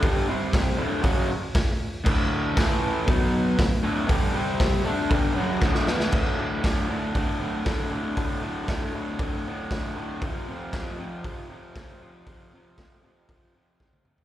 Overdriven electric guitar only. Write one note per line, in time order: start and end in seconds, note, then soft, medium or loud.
0.02 0.27 G2 loud
0.02 0.27 D3 loud
0.02 0.27 G3 loud
0.29 0.77 C3 medium
0.29 0.78 G3 loud
0.29 0.79 C4 loud
0.77 1.02 D2 loud
0.77 1.03 A2 loud
0.77 1.03 D3 loud
1.02 1.28 F#2 medium
1.02 1.29 C#3 loud
1.02 1.28 F#3 loud
2.04 2.55 D2 loud
2.04 2.55 A2 loud
2.04 2.56 D3 loud
2.55 3.06 A2 loud
2.55 3.06 E3 loud
2.55 3.06 A3 loud
3.07 3.57 B2 loud
3.07 3.58 F#3 loud
3.07 3.58 B3 loud
3.58 3.78 D2 medium
3.58 3.79 A2 medium
3.83 4.07 D2 loud
3.83 4.08 A2 loud
3.83 4.07 D3 loud
4.07 4.33 G2 loud
4.07 4.33 D3 loud
4.07 4.33 G3 loud
4.34 4.84 C3 medium
4.34 4.84 G3 medium
4.34 4.85 C4 loud
4.85 5.09 D3 medium
4.85 5.10 A3 medium
4.85 5.10 D4 loud
5.10 5.35 G2 loud
5.10 5.35 D3 loud
5.10 5.35 G3 loud
5.35 5.60 F#2 loud
5.35 5.61 C#3 medium
5.35 5.61 F#3 loud
5.61 5.86 D2 loud
5.61 5.86 A2 loud
5.61 5.87 D3 loud
5.88 6.11 E2 medium
5.88 6.12 B2 loud
5.88 6.12 E3 loud
6.12 6.37 D2 medium
6.12 6.38 A2 loud
6.12 6.39 D3 loud
6.38 6.63 D2 medium
6.38 6.62 A2 medium
6.38 6.64 D3 medium
6.63 6.88 D2 medium
6.63 6.88 A2 medium
6.63 6.90 D3 medium
6.89 7.13 D2 medium
6.89 7.13 A2 medium
6.89 7.13 D3 medium
7.14 7.38 D2 medium
7.14 7.39 A2 medium
7.14 7.40 D3 loud
7.40 7.64 D2 medium
7.40 7.65 A2 medium
7.40 7.65 D3 medium
7.65 7.90 D2 medium
7.65 7.90 A2 loud
7.65 7.91 D3 medium
7.91 8.15 D2 medium
7.91 8.16 A2 medium
7.91 8.16 D3 medium
8.16 8.41 D2 loud
8.16 8.42 A2 loud
8.16 8.42 D3 loud
8.43 8.67 D2 medium
8.43 8.67 A2 medium
8.43 8.68 D3 medium
8.68 8.92 D2 medium
8.68 8.94 A2 medium
8.68 8.94 D3 medium
8.93 9.19 D2 medium
8.93 9.19 A2 medium
8.93 9.20 D3 medium
9.20 9.45 D2 medium
9.20 9.47 A2 loud
9.20 9.47 D3 loud
9.46 9.70 D2 medium
9.46 9.71 A2 medium
9.46 9.72 D3 medium
9.72 9.95 D2 medium
9.72 9.96 A2 medium
9.72 9.97 D3 loud
9.96 10.20 D2 medium
9.96 10.20 A2 medium
9.96 10.20 D3 medium
10.23 10.48 F2 loud
10.23 10.47 C3 medium
10.23 10.49 F3 loud
10.48 10.73 F2 medium
10.48 10.73 C3 medium
10.48 10.75 F3 medium
10.74 10.99 F2 medium
10.74 10.99 C3 medium
10.74 10.99 F3 medium
10.99 11.25 F2 medium
10.99 11.26 C3 medium
10.99 11.27 F3 medium
11.26 11.49 F2 medium
11.26 11.49 C3 loud
11.26 11.50 F3 loud
11.50 11.75 F2 medium
11.50 11.75 C3 medium
11.50 11.77 F3 medium
11.76 12.01 F2 medium
11.76 12.00 C3 medium
11.76 12.02 F3 loud
12.01 12.25 F2 medium
12.01 12.26 C3 medium
12.01 12.27 F3 medium
12.26 12.52 F2 medium
12.26 12.53 C3 loud
12.26 12.53 F3 loud
12.54 12.79 F2 medium
12.54 12.79 C3 medium
12.54 12.80 F3 medium
12.80 13.02 F2 medium
12.80 13.03 C3 medium
12.80 13.04 F3 medium
13.03 13.27 F2 medium
13.03 13.27 C3 medium
13.03 13.28 F3 medium
13.28 13.53 F2 medium
13.28 13.54 C3 loud
13.28 13.55 F3 loud
13.54 13.79 F2 medium
13.54 13.79 C3 medium
13.54 13.80 F3 medium
13.80 14.04 F2 medium
13.80 14.05 C3 medium
13.80 14.05 F3 medium
14.06 14.24 F2 medium
14.06 14.24 C3 medium
14.06 14.24 F3 medium